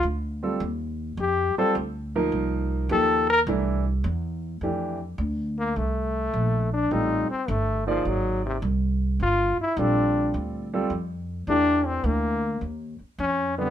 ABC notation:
X:1
M:4/4
L:1/8
Q:"Swing" 1/4=105
K:Cdor
V:1 name="Grand piano"
z [G,CFA] z3 [G,CFc] z [F,B,EB]- | [F,B,EB]2 [F,B,EG] z [=E,A,D=E] z3 | [K:F] [E,A,DG] z6 z | [G,CFA] z2 [B,_E_Ad]3 z2 |
z2 [G,CFA]3 [G,CFA] z2 | [E,A,DG]3 z4 [D,G,CD] |]
V:2 name="Trombone"
z4 G A z2 | z2 A B z4 | [K:F] z3 B, A,3 D | _E C A, F, _G, C, z2 |
F E D2 z4 | D C B,2 z2 _D =B, |]
V:3 name="Upright bass" clef=bass
D,,2 E,,2 F,, z D,,2 | C,,2 E,,2 C,,2 =E,,2 | [K:F] F,,2 D,,2 C,,2 B,,,2 | A,,, z G,,,2 _A,,,2 C,,2 |
G,,, z B,,,2 D,,2 F,,2 | E,,2 D,,2 _E,, z F,,2 |]